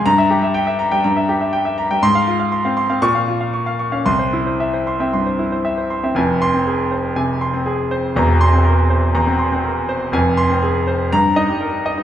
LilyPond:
<<
  \new Staff \with { instrumentName = "Grand piano" } { \time 4/4 \key c \phrygian \tempo 4 = 121 << { bes''8 r2. r8 | c'''8 r4. des'''8 r4. | c'''8 r2. r8 | r8 c'''4 r2 r8 |
r8 c'''4 r2 r8 | r8 c'''4 r8 bes''4 r4 | } \\ { r16 e''16 g'16 e''16 g''16 e''16 bes''16 g''16 bes''16 e''16 g'16 e''16 g''16 e''16 bes''16 g''16 | r16 f''16 f'16 f''16 c'''16 f''16 c'''16 f''16 r16 f''16 f'16 f''16 des'''16 f''16 des'''16 f''16 | r16 c''16 e'16 c''16 e''16 c''16 c'''16 e''16 c'''16 c''16 e'16 c''16 e''16 c''16 c'''16 e''16 | aes''8. r16 aes'8 c''8 aes''8 c'''8 aes'8 c''8 |
bes''8. r16 bes'8 c''8 bes''8 c'''8 bes'8 c''8 | aes''8. r16 aes'8 c''8 r8 ees''8 bes'8 ees''8 | } >> }
  \new Staff \with { instrumentName = "Grand piano" } { \clef bass \time 4/4 \key c \phrygian g,4.~ g,16 g16 g,4.~ g,16 g16 | aes,4~ aes,16 c'8 c'16 bes,4.~ bes,16 des'16 | c,4.~ c,16 c'16 g,8 r4 r16 c'16 | <f,, f,>8. c'8 r8. c8 r16 c'8 r8. |
<e,, e,>8. c'8 r8. e,16 c'8 c'8 r8. | <f,, f,>8. c'8 r8. g,8 ees'16 g8 r8 ees'16 | }
>>